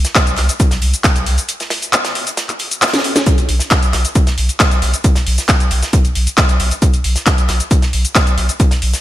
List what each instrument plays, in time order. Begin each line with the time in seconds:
0.05 snare, closed hi-hat, shaker
0.15 kick, snare, clap, closed hi-hat, shaker
0.27 sub bass C2, closed hi-hat, shaker
0.36 sub bass C2, snare, clap, closed hi-hat, open hi-hat
0.49 closed hi-hat, shaker
0.60 kick, closed hi-hat, shaker
0.71 sub bass C2, snare, closed hi-hat, shaker
0.82 sub bass C2, closed hi-hat, open hi-hat
0.93 closed hi-hat, shaker
1.04 kick, snare, clap, closed hi-hat, shaker
1.16 sub bass C2, closed hi-hat, shaker
1.26 sub bass C2, closed hi-hat, open hi-hat
1.38 closed hi-hat, shaker
1.49 closed hi-hat, shaker
1.60 snare, closed hi-hat, shaker
1.70 snare, closed hi-hat, open hi-hat
1.82 closed hi-hat, shaker
1.93 clap, closed hi-hat, shaker
2.05 snare, closed hi-hat, shaker
2.15 open hi-hat
2.27 closed hi-hat, shaker
2.37 snare, closed hi-hat, shaker
2.49 clap, closed hi-hat, shaker
2.59 closed hi-hat, open hi-hat
2.71 closed hi-hat, shaker
2.82 snare, clap, closed hi-hat, shaker
2.88 snare, closed hi-hat
2.93 snare, closed hi-hat, shaker
2.99 snare, closed hi-hat
3.04 closed hi-hat, open hi-hat
3.16 snare, closed hi-hat, shaker
3.26 kick, closed hi-hat, shaker
3.38 sub bass B1, closed hi-hat, shaker
3.49 sub bass B1, closed hi-hat, open hi-hat
3.59 snare, closed hi-hat, shaker
3.70 kick, snare, clap, closed hi-hat, shaker
3.83 sub bass B1, closed hi-hat, shaker
3.93 sub bass B1, snare, clap, closed hi-hat, open hi-hat
4.05 closed hi-hat, shaker
4.15 kick, closed hi-hat, shaker
4.27 sub bass B1, snare, closed hi-hat, shaker
4.38 sub bass B1, closed hi-hat, open hi-hat
4.49 closed hi-hat, shaker
4.60 kick, snare, clap, closed hi-hat, shaker
4.71 sub bass B1, closed hi-hat, shaker
4.82 sub bass B1, closed hi-hat, open hi-hat
4.94 closed hi-hat, shaker
5.04 kick, closed hi-hat, shaker
5.15 sub bass B1, snare, closed hi-hat, shaker
5.26 sub bass B1, open hi-hat
5.38 snare, closed hi-hat, shaker
5.48 kick, snare, clap, closed hi-hat, shaker
5.60 sub bass B1, closed hi-hat, shaker
5.71 sub bass B1, closed hi-hat, open hi-hat
5.82 snare, closed hi-hat, shaker
5.93 kick, closed hi-hat, shaker
6.05 sub bass B1, closed hi-hat, shaker
6.15 sub bass B1, closed hi-hat, open hi-hat
6.27 closed hi-hat, shaker
6.37 kick, snare, clap, closed hi-hat, shaker
6.49 sub bass B1, closed hi-hat, shaker
6.60 sub bass B1, closed hi-hat, open hi-hat
6.71 closed hi-hat, shaker
6.82 kick, closed hi-hat, shaker
6.94 sub bass B1, closed hi-hat, shaker
7.04 sub bass B1, closed hi-hat, open hi-hat
7.16 snare, closed hi-hat, shaker
7.26 kick, snare, clap, closed hi-hat, shaker
7.38 sub bass B1, closed hi-hat, shaker
7.48 sub bass B1, snare, clap, closed hi-hat, open hi-hat
7.60 closed hi-hat, shaker
7.71 kick, closed hi-hat, shaker
7.82 sub bass B1, snare, closed hi-hat, shaker
7.93 sub bass B1, closed hi-hat, open hi-hat
8.05 closed hi-hat, shaker
8.15 kick, snare, clap, closed hi-hat, shaker
8.27 sub bass B1, closed hi-hat, shaker
8.38 sub bass B1, closed hi-hat, open hi-hat
8.49 closed hi-hat, shaker
8.60 kick, closed hi-hat, shaker
8.71 sub bass B1, snare, closed hi-hat, shaker
8.82 sub bass B1, open hi-hat
8.93 snare, closed hi-hat, shaker